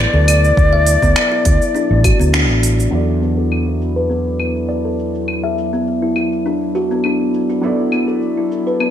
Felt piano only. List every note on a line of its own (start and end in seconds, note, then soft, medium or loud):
2.91 7.59 F#3 medium
2.91 7.59 B3 medium
2.91 7.60 E4 medium
2.91 7.61 A4 medium
2.95 7.61 D5 medium
7.61 8.90 F#3 medium
7.61 8.90 B3 medium
7.61 8.90 E4 medium
7.61 8.90 A4 medium
7.66 8.90 D5 medium